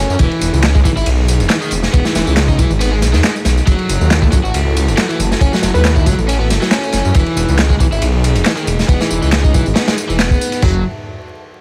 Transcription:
Already playing: C#4 F#4 A4
0.09 F#2, tambourine
0.19 E1 E3 D#4 G#4, kick, ride, tambourine
0.31 ride
0.41 E1, ride, tambourine
0.53 C#2, tambourine
0.62 snare, clap, ride, tambourine
0.75 G#3, kick, tambourine
0.85 B1 E3, kick, ride, tambourine
0.96 G#1 E4, tambourine
1.06 B1, ride, tambourine
1.28 ride, tambourine
1.40 E1, ride, tambourine
1.50 E3, snare, clap, ride, tambourine
1.61 D#3, ride, tambourine
1.71 E1, ride, tambourine
1.83 snare, tambourine
1.93 E1 B3, kick, ride, tambourine
2.05 E3, snare, tambourine
2.15 E1, snare, ride, tambourine
2.26 C#2 E3, tambourine
2.37 snare, clap, ride, tambourine
2.48 D#4, kick, tambourine
2.58 B1 E3, kick, ride, tambourine
2.70 G#1, tambourine
2.80 B3, ride, tambourine
2.91 G#3
3.02 B1, snare, ride, tambourine
3.13 E2 D#3, snare, tambourine
3.23 G#3, snare, clap, ride, tambourine
3.36 tambourine
3.45 B1, snare, ride, tambourine
3.57 tambourine
3.67 F#1 F#3 E4 F#4 A4, kick, ride, tambourine
3.79 ride
3.89 F#1, ride, tambourine
4.01 D#2, tambourine
4.10 snare, clap, ride, tambourine
4.22 A3, kick, tambourine
4.32 C#2 F#3, kick, ride, tambourine
4.44 A1 F#4, tambourine
4.54 C#2, ride, tambourine
4.77 ride, tambourine
4.88 F#1, ride, tambourine
4.97 F#3, snare, clap, ride, tambourine
5.09 E3, ride, tambourine
5.19 F#1, ride, tambourine
5.32 snare, tambourine
5.41 F#1 C#4, kick, ride, tambourine
5.53 F#3, snare, tambourine
5.62 F#1, snare, ride, tambourine
5.74 D#2 F#3 B4, tambourine
5.85 snare, clap, ride, tambourine
5.96 E4, kick, tambourine
6.06 C#2 F#3, kick, ride, tambourine
6.18 A1, tambourine
6.28 C#4, ride, tambourine
6.39 B3
6.50 F#1, snare, ride, tambourine
6.61 F#3, snare, tambourine
6.71 C#4, snare, clap, ride, tambourine
6.84 tambourine
6.92 F#1, snare, ride, tambourine
7.05 F#2, tambourine
7.14 E1 E3 D#4 G#4, kick, ride, tambourine
7.26 ride
7.36 E1, ride, tambourine
7.49 C#2, tambourine
7.59 snare, clap, ride, tambourine
7.70 G#3, kick, tambourine
7.80 B1 E3, kick, ride, tambourine
7.92 G#1 E4, tambourine
8.02 B1, ride, tambourine
8.24 ride, tambourine
8.35 E1, ride, tambourine
8.45 E3, snare, clap, ride, tambourine
8.57 D#3, ride, tambourine
8.67 E1, ride, tambourine
8.79 snare, tambourine
8.88 E1 B3, kick, ride, tambourine
9.00 E3, snare, tambourine
9.11 E1, tambourine
9.22 C#2 E3, tambourine
9.32 snare, clap, ride, tambourine
9.44 D#4, kick, tambourine
9.54 B1 E3, kick, ride, tambourine
9.66 G#1, tambourine
9.75 B3, snare, ride, tambourine
9.87 G#3, snare, ride, tambourine
9.98 ride, tambourine
10.09 E1 E3, tambourine
10.19 B3, snare, clap, ride, tambourine
10.31 kick, tambourine
10.41 ride, tambourine
10.52 ride, tambourine
10.62 F#1 F#3 F#4 E5 A5, kick, floor tom, splash

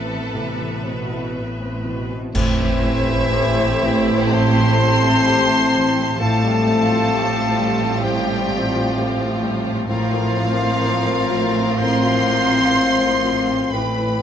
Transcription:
Already playing: A1 A2 E3 B3 C4 E4 A4 B4 E5
0.08 C4
0.34 A2 C3
0.58 E3
0.83 B2 C5
1.09 E4
1.35 A2 B4
1.60 C4
1.85 B2 E3
2.11 C4
2.34 A1 A2 E3 A3 C4 E4 G4 C5 E5, concert bass drum, crash
2.60 E3
2.84 C4
3.08 E4
3.32 G4
3.57 C4
3.83 E3
4.08 C4
4.32 A2 C4 C5 A5 C6
4.57 E3
4.81 C4
5.03 E4
5.28 G4
5.51 C4
5.74 E3
5.98 C4
6.19 A1 A2 F3 A3 C4 F4 G4 A4 F5 A5
6.44 G3
6.67 C4
6.90 F4
7.13 G4
7.36 C4
7.58 G3
7.81 C4
8.03 A2 G3 G4 C5 G5
8.27 G3
8.51 C4
8.74 F4
8.97 G4
9.20 C4
9.43 G3
9.66 C4
9.88 A1 A2 F3 C4 F4 A#4 C5 F5
10.12 F3
10.36 C4
10.58 F4
10.82 A#4
11.04 C4
11.30 F3
11.55 C4
11.77 A2 C4 C5 F5 C6
12.03 F3
12.27 C4
12.50 F4
12.75 A#4
12.99 C4
13.24 F3
13.49 C4
13.73 A1 A2 E3 A3 C4 B4 G5 B5
13.99 E3

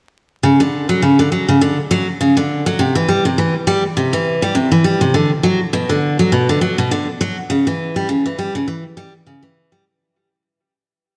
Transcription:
0.43 C#3
0.60 D3
0.89 F#3
1.02 C#3
1.19 D3
1.32 F#3
1.49 C#3
1.61 D3
1.91 F#3
2.21 C#3
2.37 D3
2.66 F#3
2.79 C3
2.95 E3
3.08 G3
3.25 C3
3.38 E3
3.67 G3
3.97 C3
4.13 E3
4.42 G3
4.55 C3
4.72 E3
4.84 G3
5.01 C3
5.14 D3
5.43 F#3
5.73 B2
5.89 D3
6.19 F#3
6.32 B2
6.49 D3
6.61 F#3
6.78 B2
6.91 D3
7.21 F#3
7.50 C#3
7.67 E3
7.96 G3
8.09 C#3
8.26 E3
8.38 G3
8.55 C#3
8.68 E3
8.97 G3
9.27 C#3
9.43 E3
9.72 G3

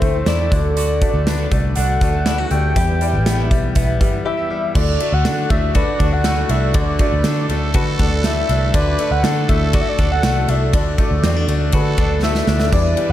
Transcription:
Already playing: A2 E3 A3 C4 E4 A4 C5
0.02 D2 A3 E4 A4 C5, kick, closed hi-hat
0.14 C4 E4 A4
0.26 E2 E4 A4 C5 D5, snare, closed hi-hat
0.39 A3 C4 E4 A4
0.51 D2 D3 A3 D4 F#4 A4 D5, kick, closed hi-hat
0.77 D3 F#4 D5, closed hi-hat
1.01 A3 F#4 A4 D5, kick, closed hi-hat
1.13 D2 D4 F#4 A4
1.26 D4 F#4 A4 B4, snare, closed hi-hat
1.38 D3 A3 D4 F#4 A4
1.51 C2 A3 F#4 A4 D5, kick, closed hi-hat
1.75 C2 D3 A3 D4 F#4 A4 D5 F#5, closed hi-hat
2.01 D2 A3 F#4 A4 D5, kick, snare, closed hi-hat
2.13 D4 F#4 A4
2.26 E4 F#4 A4 D5, snare, closed hi-hat
2.38 D4 F#4 A4
2.51 D2 A3 F#4 A4 D5 G5, closed hi-hat
2.75 E2 E3 G3 B3 E4 G4 B4 E5, kick, closed hi-hat
3.00 G3 G4 B4 D5, closed hi-hat
3.12 A1 G3 B3 E4
3.25 B3 G4 B4 E5, snare, closed hi-hat
3.38 E3 G3 B3 E4
3.50 B1 G3 G4 B4 E5, kick, closed hi-hat
3.75 B1 E3 G3 B3 E4 G4 B4 E5, kick, closed hi-hat
4.00 G1 G3 G4 B4 E5, kick, closed hi-hat
4.12 G3 B3 E4
4.25 G4 B4 E5
4.37 G3 B3 E4
4.50 G3 G4 B4 E5
4.75 D2 D3 A3 D4 F#4 A4 D5, kick, crash
5.00 A3 F#4 A4 D5, ride
5.12 D2 F#5
5.25 D3 D4 F#4 A4 D5, snare, ride
5.50 D2 D3 A3 D4 F#4 A4 D5 E5, kick, ride
5.74 F#4 A4 B4 D5, kick, ride
5.99 D2 D3 A3 D4 F#4 A4 D5, kick, ride
6.13 F#5
6.24 D3 A3 D4 F#4 A4 D5, snare, ride
6.49 C2 D3 A3 D4 F#4 A4 D5 E5, ride
6.74 D2 D3 A3 D4 F#4 A4 D5, kick, ride
6.99 A3 F#4 A4 D5, kick, ride
7.12 D2
7.18 B4
7.24 D3 D4 F#4 A4 D5, snare, ride
7.49 D2 D3 A3 D4 F#4 A4 D5, ride
7.74 D3 F#4 A4 B4, kick, ride
7.98 D2 D3 A3 D4 F#4 A4 D5, kick, snare, ride
8.24 D3 A3 D4 F#4 A4 D5 E5, snare, ride
8.49 C2 D3 A3 D4 F#4 A4 D5, ride
8.73 D2 D3 A3 D4 F#4 A4 B4 D5, kick, ride
8.98 A3 F#4 A4 D5, ride
9.11 D2 F#5
9.23 D3 D4 F#4 A4 D5, snare, ride
9.48 D2 D3 A3 D4 F#4 A4 D5 E5, kick, ride
9.73 F#4 A4 D5, kick, ride
9.81 E5
9.89 D5
9.98 D2 D3 A3 D4 F#4 A4 D5, kick, ride
10.12 F#5
10.23 C2 D3 A3 D4 F#4 A4 D5, snare, ride
10.48 C2 D3 A3 D4 F#4 A4 D5 E5, ride
10.73 D2 D3 A3 D4 F#4 A4 D5, kick, ride
10.98 A3 F#4 A4 D5, kick, ride
11.11 D2
11.22 E2 C4 F#4 A4 D5, snare, ride
11.36 D4
11.47 D2 D3 A3 D4 F#4 A4 D5, ride
11.72 D3 F#4 A4 B4, kick, ride
11.97 D2 D3 A3 D4 F#4 A4 D5, kick, ride
12.22 D3 A3 D4 F#4 A4 B4 E5, snare
12.35 snare
12.47 D2 D3 A3 D4 F#4 A4 D5, snare
12.60 snare
12.72 E2 E3 G3 D4 E4 G4 B4 D5, kick, splash
12.97 G3 E4 G4 D5, ride

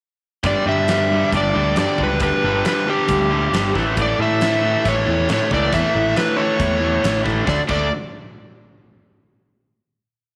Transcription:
0.43 G1 G2 D3 G3 D5, kick, closed hi-hat
0.66 G2 D3 G3 E5
0.88 G2 D3 G3, snare, closed hi-hat
1.11 G2 D3 G3
1.32 G1 G2 D3 G3, kick, closed hi-hat
1.37 D5
1.54 D2 G2 D3 G3
1.76 G2 D3 G3 D5, snare, closed hi-hat
1.98 C#2 G2 D3 G3, kick
2.03 B4
2.20 D2 G2 D3 G3 B4, kick, closed hi-hat
2.44 G1 G2 D3 G3
2.64 G2 D3 G3, snare, closed hi-hat
2.68 B4
2.87 G2 D3 G3 G4
3.08 D2 G2 D3 G3, kick, closed hi-hat
3.31 G2 D3 G3
3.53 G1 G2 D3 G3, snare, closed hi-hat
3.74 A1 A2 E3 A3, kick, snare
3.96 A2 E3 A3, kick, closed hi-hat
4.02 D5
4.19 A2 E3 A3 E5
4.41 A2 E3 A3, snare, closed hi-hat
4.62 A2 E3 A3
4.85 A1 A2 E3 A3 C#5, kick, closed hi-hat
5.06 E2 A2 E3 A3
5.28 A2 E3 A3, snare, closed hi-hat
5.34 C#5
5.51 C#2 A2 E3 A3 D5, kick, snare
5.72 E2 A2 E3 A3 E5, kick, closed hi-hat
5.94 A1 A2 E3 A3
6.15 A2 E3 A3 B4, snare, closed hi-hat
6.37 A2 E3 A3 C#5
6.58 E2 A2 E3 A3, kick, closed hi-hat
6.80 A2 E3 A3
7.03 A1 A2 E3 A3, snare, closed hi-hat
7.24 A2 E3 A3, kick, snare
7.45 D2 D3 A3 D4 D5, kick, snare
7.68 D2 D3 A3 D4 D5, kick, crash

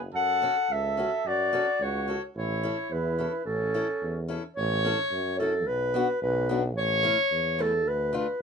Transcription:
Already playing: F#1
0.13 F#2 A4 F#5
0.42 C#4 F#4 A4
0.69 C#2 A4 E5
0.97 C#4 F#4 A4
1.25 F#2 F#4 D5
1.53 C#4 F#4 A4
1.80 C#2 F#4 C#5
2.08 C#4 F#4 A4
2.35 A1 E4 C#5
2.63 C#4 E4 A4
2.90 E2 E4 B4
3.19 C#4 E4 A4
3.45 A1 C#4 A4
3.74 C#4 E4 A4
4.01 E2
4.28 C#4 E4 A4
4.57 A1 C#5
4.85 C#4 E4 A4
5.12 F#2
5.39 C#4 E4 A4
5.67 B1 B4
5.94 B3 D4 F#4
6.22 B1 B4
6.49 B3 D4 F#4
6.76 A1 C#5
7.03 A3 C#4 E4
7.31 E2
7.59 A3 C#4 E4 A4
7.86 D2 B4
8.13 A3 D4 F4 B4

